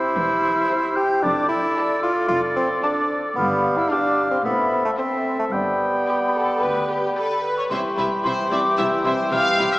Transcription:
Already playing: bassoon E4, clarinet G4, oboe C5, flute E6
0.17 double bass section E1, cello section E2
0.70 viola section G4, french horn section G4 C5, violin section C5 E5
0.95 bassoon G4, flute G6
1.23 double bass section F1, cello section F2, bassoon D4, clarinet A4, oboe D5, flute D6
1.49 bassoon E4, flute E6
1.77 french horn section A4 D5, viola section A4, violin section D5 A5
2.03 bassoon F4, flute F6
2.28 double bass section F1, cello section F2, bassoon F4, flute F6
2.56 bassoon C4, flute C6
2.83 bassoon D4, viola section A4, french horn section A4 D5, violin section D5 A5, flute D6
3.36 double bass section G1, cello section G2, bassoon B3, clarinet G4, french horn section D5 F5, oboe F5, flute B5
3.77 bassoon E4, flute E6
3.90 bassoon D4, clarinet G4, viola section G4, violin section D5 F5, french horn section D5 F5, oboe F5, flute D6
4.31 bassoon C4, flute C6
4.44 double bass section A1, cello section A2, bassoon B3, clarinet A4, french horn section C5 E5, oboe E5, flute B5
4.85 bassoon A3, flute A5
4.98 bassoon C4, clarinet A4, violin section C5 E5, viola section C5, french horn section C5 E5, oboe E5, flute C6
5.38 bassoon A3, flute A5
5.52 double bass section G1, cello section G2, bassoon B3, clarinet G4, french horn section D5, oboe G5, flute B5
6.07 viola section G4, violin section D5 G5
6.35 viola section A4
6.61 cello section D2, double bass section D2, viola section B4
6.89 viola section G4
7.16 viola section A4, violin section B4 D5 G5, flute B5, glockenspiel B5
7.43 viola section B4
7.58 violin section C#5, flute C#6, glockenspiel C#6
7.70 double bass section C2, cello section C3, bassoon E3, french horn section G3 E4, viola section G3 E4, clarinet G4, violin section C5 E5, oboe G5, flute C6, glockenspiel C6
7.96 double bass section C2, cello section C3, viola section G3 E4, violin section B4 E5, flute B5, glockenspiel B5
8.23 double bass section C2, cello section C3, viola section G3 E4, violin section C5 E5, glockenspiel C6, flute C6
8.50 double bass section C2, cello section C3, viola section G3 E4, violin section D5 E5, flute D6, glockenspiel D6
8.77 double bass section C2, cello section C3, viola section G3 E4, violin section E5, glockenspiel E6, flute E6
9.04 double bass section C2, cello section C3, viola section G3 E4, violin section C5 E5, flute C6, glockenspiel C6
9.31 double bass section C2, cello section C3, viola section G3 E4, violin section E5 F5, flute F6, glockenspiel F6
9.58 double bass section C2, cello section C3, viola section G3 E4, violin section E5
9.72 violin section E5, flute E6, glockenspiel E6

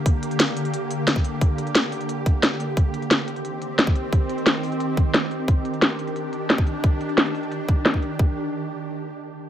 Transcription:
Already playing: synth drone D3 A#3 G4
0.06 kick, closed hi-hat
0.23 closed hi-hat
0.31 closed hi-hat
0.40 snare, closed hi-hat
0.57 closed hi-hat
0.65 closed hi-hat
0.74 closed hi-hat
0.91 closed hi-hat
1.07 snare, closed hi-hat
1.16 kick
1.24 closed hi-hat
1.41 kick, closed hi-hat
1.58 closed hi-hat
1.67 closed hi-hat
1.75 snare, closed hi-hat
1.92 open hi-hat
2.01 closed hi-hat
2.09 closed hi-hat
2.26 kick, closed hi-hat
2.43 snare, closed hi-hat
2.60 closed hi-hat
2.77 synth drone D#3 C4, kick, closed hi-hat
2.94 closed hi-hat
3.02 closed hi-hat
3.11 snare, closed hi-hat
3.28 closed hi-hat
3.36 closed hi-hat
3.45 closed hi-hat
3.62 closed hi-hat
3.79 snare, closed hi-hat
3.87 kick
3.96 closed hi-hat
4.13 kick, closed hi-hat
4.29 closed hi-hat
4.38 closed hi-hat
4.46 snare, closed hi-hat
4.63 open hi-hat
4.72 closed hi-hat
4.80 closed hi-hat
4.97 kick, closed hi-hat
5.14 snare, closed hi-hat
5.31 closed hi-hat
5.48 synth drone D4, kick, closed hi-hat
5.65 closed hi-hat
5.74 closed hi-hat
5.82 snare, closed hi-hat
5.99 closed hi-hat
6.07 closed hi-hat
6.16 closed hi-hat
6.33 closed hi-hat
6.50 snare, closed hi-hat
6.58 kick
6.67 closed hi-hat
6.84 kick, closed hi-hat
7.01 closed hi-hat
7.09 closed hi-hat
7.18 snare, closed hi-hat
7.26 closed hi-hat
7.35 open hi-hat
7.43 closed hi-hat
7.52 closed hi-hat
7.69 kick, closed hi-hat
7.85 snare, closed hi-hat
7.94 kick
8.02 closed hi-hat
8.19 kick

